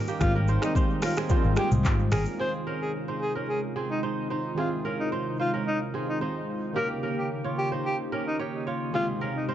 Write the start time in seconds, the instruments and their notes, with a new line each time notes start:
Already playing: synth keys D#3 G3 A#3 C#4 F4 G4, kora C#4 D#4 A#4
0.07 kora A#3 G4, shaker
0.20 fingered electric bass G#1, synth keys D#3 G3 G#3 C4 G4, alto saxophone F4, finger snap, kick, cross-stick, shaker
0.35 kora C#4 A#4
0.48 kora D#4 C5, shaker
0.61 synth keys D#3 G3 G#3 C4 G4, alto saxophone D#4, finger snap, cross-stick, shaker
0.75 kora D#4 C5, kick, shaker
1.02 kora C#4 A#4, alto saxophone F4, finger snap, cross-stick, open hi-hat, shaker
1.16 kora C4 G#4, finger snap, cross-stick, shaker
1.29 synth keys D#3 G3 G#3 A#3 F4, kora D#4 C5, kick, shaker
1.37 synth keys C4
1.44 fingered electric bass G#1
1.56 kora C4 G#4, alto saxophone G4, finger snap, cross-stick, shaker
1.71 fingered electric bass C2, mid tom, shaker
1.84 fingered electric bass G#2, kick, clap, shaker
2.12 fingered electric bass G#1, kora C#4 A#4, alto saxophone G#4, finger snap, cross-stick, mid tom, open hi-hat, shaker
2.26 shaker
2.37 analog synth pad C3 G#3 D#4 F4, synth keys D#3 G#3 C4, kora C4 G#4, alto saxophone C5
2.42 synth keys F4
2.67 kora C#4 A#4
2.81 alto saxophone G#4
3.08 kora D#4 C5
3.21 alto saxophone G#4
3.35 kora C#4 A#4
3.49 alto saxophone G#4
3.76 kora C4 G#4
3.90 alto saxophone D#4
4.03 kora D#4 C5
4.30 kora D#4 C5
4.55 synth keys D#3 G#3 C4, kora C4 G#4, alto saxophone F4
4.60 synth keys E4
4.66 synth keys F4
4.85 kora C#4 A#4
4.99 alto saxophone D#4
5.12 kora D#4 C5
5.39 kora D#4 C5, alto saxophone F4
5.54 kora C#4 A#4
5.67 alto saxophone D#4
5.94 kora C4 G#4
6.08 alto saxophone D#4
6.19 synth keys D#3 G#3 C4 F4, kora D#4 C5
6.73 analog synth pad C#3 A#3 D#4 G4, synth keys D#3 A#3 C#4, kora A#3 G4, alto saxophone A#4
6.78 synth keys F#4
6.84 synth keys G4
7.03 kora C#4 A#4
7.17 alto saxophone G4
7.44 kora F4 C#5
7.58 alto saxophone G4
7.72 kora D#4 C5
7.85 alto saxophone G4
8.12 kora C#4 A#4
8.27 alto saxophone D#4
8.39 kora G4 C#5
8.67 kora F4 C#5
8.91 analog synth pad C3 G#3 D#4, synth keys D#3 G#3 C4, kora C4 G#4, alto saxophone F4
8.96 synth keys G4
9.21 kora C#4 A#4
9.36 alto saxophone D#4
9.48 kora D#4 C5